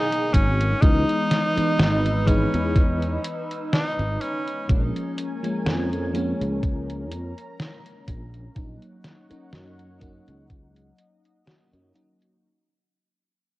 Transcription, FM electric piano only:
0.00 0.76 F#3 medium
0.00 0.77 B3 medium
0.00 0.78 D#4 loud
0.00 0.77 A#4 medium
0.81 1.50 E3 medium
0.81 1.50 G#3 medium
0.81 1.51 B3 medium
0.81 1.51 D#4 medium
1.56 2.22 E3 medium
1.56 2.22 G#3 medium
1.56 2.22 B3 medium
1.56 2.22 D#4 medium
2.26 4.63 E3 medium
2.26 4.64 G#3 medium
2.26 4.64 B3 medium
2.26 4.65 D#4 loud
4.68 5.37 F3 medium
4.68 5.38 G#3 medium
4.68 5.38 A#3 medium
4.68 5.38 C#4 medium
5.43 6.09 F3 medium
5.43 6.09 G#3 medium
5.43 6.09 A#3 medium
5.43 6.09 C#4 medium
6.13 8.50 F3 medium
6.13 8.51 G#3 medium
6.13 8.51 A#3 medium
6.13 8.52 C#4 loud
8.56 9.24 F#3 medium
8.56 9.25 A#3 medium
8.56 9.25 C#4 medium
8.56 9.25 D#4 medium
9.30 9.96 F#3 medium
9.30 9.96 A#3 medium
9.30 9.96 C#4 medium
9.30 9.97 D#4 medium
9.99 11.41 F#3 medium
9.99 11.42 A#3 medium
9.99 11.42 C#4 medium
9.99 11.43 D#4 loud
11.46 11.62 F#3 medium
11.46 11.63 A#3 medium
11.46 11.63 C#4 medium
11.46 11.63 F#4 medium
11.94 12.38 F#3 medium
11.94 12.38 A#3 medium
11.94 12.38 C#4 medium
11.94 12.38 D#4 medium

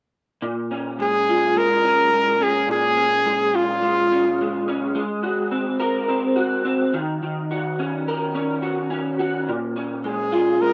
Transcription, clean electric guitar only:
0.42 2.67 A#2 medium
0.71 1.83 C#4 medium
0.99 1.56 G#3 medium
1.29 3.52 F4 medium
1.56 2.12 G#3 medium
1.84 2.40 C#4 medium
2.13 3.25 G#3 soft
2.41 2.96 C#4 medium
2.68 4.95 A#2 medium
2.97 4.10 C#4 soft
3.26 3.82 G#3 medium
3.53 5.01 F4 medium
3.82 4.40 G#3 medium
4.11 4.67 C#4 medium
4.41 4.94 G#3 soft
4.68 5.02 C#4 medium
4.95 6.99 G#3 medium
5.23 6.36 F#4 medium
5.51 6.07 C4 medium
5.80 8.07 A#4 medium
6.08 6.64 C4 medium
6.36 7.50 F#4 medium
6.65 6.99 C4 medium
6.94 7.21 D#3 medium
7.23 9.49 D#3 medium
7.51 8.61 F#4 medium
7.79 8.34 C#4 medium
8.08 10.07 A#4 medium
8.35 8.90 C#4 medium
8.62 9.18 F#4 medium
8.90 9.76 C#4 medium
9.19 9.54 F#4 medium
9.49 10.73 A#2 medium
9.76 10.73 C#4 medium
10.04 10.61 G#3 soft
10.32 10.73 F4 medium
10.62 10.73 G#3 medium

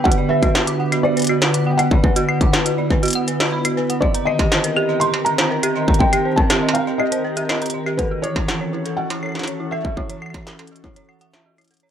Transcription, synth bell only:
0.05 0.12 F#4 medium
0.18 0.24 D5 medium
0.30 0.37 B4 medium
0.43 0.49 F#4 loud
0.55 0.61 F#5 medium
0.67 0.74 D6 medium
0.80 0.84 F#5 medium
0.92 0.99 F#4 medium
1.05 1.11 D5 medium
1.17 1.23 B4 medium
1.29 1.36 F#4 loud
1.42 1.48 F#5 medium
1.54 1.61 D6 medium
1.66 1.70 F#5 medium
1.79 1.85 F#4 medium
1.91 1.98 D5 medium
2.04 2.10 B4 medium
2.16 2.23 F#4 loud
2.29 2.35 F#5 medium
2.41 2.47 D6 medium
2.53 2.57 F#5 medium
2.66 2.72 F#4 medium
2.78 2.85 D5 medium
2.90 2.97 B4 medium
3.03 3.09 F#4 loud
3.15 3.22 F#5 medium
3.28 3.34 B4 medium
3.40 3.47 F#4 loud
3.52 3.59 B5 medium
3.65 3.71 F#4 medium
3.77 3.84 B4 medium
3.90 3.96 F#5 medium
4.02 4.09 D#5 medium
4.14 4.21 A#5 medium
4.27 4.31 D#5 medium
4.39 4.46 G4 medium
4.52 4.58 C5 medium
4.64 4.71 A#4 medium
4.76 4.83 G4 loud
4.89 4.95 D#5 medium
5.01 5.08 A#5 medium
5.14 5.18 D#5 medium
5.26 5.33 G4 medium
5.38 5.45 C5 medium
5.51 5.57 A#4 medium
5.63 5.70 G4 loud
5.76 5.82 D#5 medium
5.88 5.95 A#5 medium
6.00 6.04 D#5 medium
6.13 6.19 G4 medium
6.25 6.32 C5 medium
6.38 6.44 A#4 medium
6.50 6.57 G4 loud
6.63 6.69 D#5 medium
6.75 6.81 A#5 medium
6.87 6.91 D#5 medium
7.00 7.06 G4 medium
7.12 7.18 C5 medium
7.24 7.31 A#4 medium
7.37 7.43 G4 loud
7.49 7.56 D#5 medium
7.62 7.68 A#5 medium
7.74 7.78 D#5 medium
7.86 7.93 G4 medium
7.99 8.05 A4 medium
8.11 8.18 F#4 medium
8.24 8.30 E4 loud
8.36 8.42 C#5 medium
8.48 8.55 F#5 medium
8.61 8.65 C#5 medium
8.73 8.80 E4 medium
8.86 8.92 A4 medium
8.98 9.04 F#4 medium
9.10 9.17 E4 loud
9.23 9.29 C#5 medium
9.35 9.42 F#5 medium
9.48 9.51 C#5 medium
9.60 9.66 E4 medium
9.72 9.79 A4 medium
9.85 9.91 F#4 medium
9.97 10.04 E4 loud
10.10 10.16 C#5 medium
10.22 10.28 F#5 medium
10.34 10.38 C#5 medium
10.47 10.53 E4 medium
10.59 10.66 A4 medium
10.72 10.78 F#4 medium
10.84 10.90 E4 loud
10.96 11.03 C#5 medium
11.09 11.15 F#5 medium
11.21 11.28 F#5 loud
11.33 11.43 E5 loud
11.46 11.50 F#4 loud
11.58 11.65 E4 medium
11.71 11.75 A4 medium
11.83 11.91 C#5 loud

